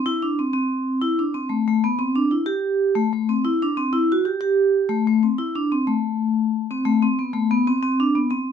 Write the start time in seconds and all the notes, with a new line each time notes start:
0.06 E4
0.22 D4
0.39 C4
0.53 C4
1.02 E4
1.19 D4
1.34 C4
1.49 A3
1.68 A3
1.84 B3
1.99 C4
2.15 D4
2.31 E4
2.46 G4
2.95 A3
3.13 A3
3.29 C4
3.45 E4
3.62 D4
3.77 C4
3.93 E4
4.12 F#4
4.25 G4
4.41 G4
4.89 A3
5.07 A3
5.23 C4
5.38 E4
5.55 D4
5.72 C4
5.87 A3
6.71 C4
6.85 A3
7.02 C4
7.19 B3
7.33 A3
7.51 B3
7.67 C4
7.83 C4
8.00 D4
8.15 B3
8.31 C4